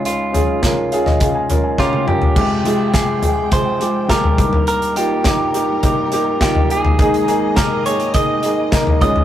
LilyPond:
<<
  \new Staff \with { instrumentName = "Clean electric guitar" } { \time 4/4 \key f \minor \tempo 4 = 104 f'2. f'8 g'8~ | g'4 aes'4 c''4 bes'4 | bes'8 g'2~ g'8 g'8 aes'8~ | aes'4 bes'8 des''8 ees''4. ees''8 | }
  \new Staff \with { instrumentName = "Upright piano" } { \time 4/4 \key f \minor << { r4. f''16 ees''16 f''16 aes''8 aes''16 bes''16 c'''8. | r1 | r1 | r1 | } \\ { <des' f' aes'>8 <des' f' aes'>8 <des' f' bes'>8 <des' f' aes'>8 <des' f' aes'>8 <des' f' bes'>8 <des' f' g'>8 <des' f' bes'>8 | <aes f' g'>8 <aes f' aes'>8 <aes f' g'>8 <aes f' aes'>8 <aes f' aes'>8 <aes f' g'>8 <aes f' g'>8 <bes ees' g'>8~ | <bes ees' g'>8 <bes ees' f'>8 <bes ees' g'>8 <bes ees' g'>8 <bes ees' g'>8 <bes ees' g'>8 <bes ees' f'>8 <bes ees' g'>8 | <bes ees' aes'>8 <bes ees' aes'>8 <bes ees' g'>8 <bes ees' aes'>8 <bes ees' aes'>8 <bes ees' aes'>8 <bes ees' bes'>8 <des' f' aes'>8 | } >> }
  \new Staff \with { instrumentName = "Upright piano" } { \clef bass \time 4/4 \key f \minor <des, aes,>2.~ <des, aes,>8 r8 | <f, c>2.~ <f, c>8 <g, g>8~ | <g, g>2.~ <g, g>8 r8 | <aes, ees>2.~ <aes, ees>8 <des, aes,>8 | }
  \new Staff \with { instrumentName = "String section" } { \clef bass \time 4/4 \key f \minor << { r1 | <f, f g''>2.~ <f, f g''>8 <g, g bes'>8~ | <g, g bes'>1 | <aes, aes ees''>2.~ <aes, aes ees''>8 <des, des aes'>8 | } \\ { r1 | <aes c'>2.~ <aes c'>8 <bes ees'>8~ | <bes ees'>1~ | <bes ees'>2.~ <bes ees'>8 f'8 | } >> }
  \new DrumStaff \with { instrumentName = "Drums" } \drummode { \time 4/4 hh8 <hh tomfh>8 <hh bd sn>8 hh16 <sn tomfh>16 <hh bd>8 <hh tomfh>8 <bd sn>16 tommh16 toml16 tomfh16 | <cymc bd>8 hh8 <hh bd sn>8 <hh tomfh>8 <hh bd>8 hh8 <hh bd sn>16 tomfh16 <hh bd>16 tomfh16 | hh16 hh16 hh8 <hh bd sn>8 hh8 <hh bd>8 hh8 <hh bd sn>16 tomfh16 hh16 tomfh16 | <hh bd>16 hh16 hh8 <hh bd sn>8 hh16 hh16 <hh bd>8 hh8 <hh bd sn>16 tomfh16 <hh bd>16 tomfh16 | }
>>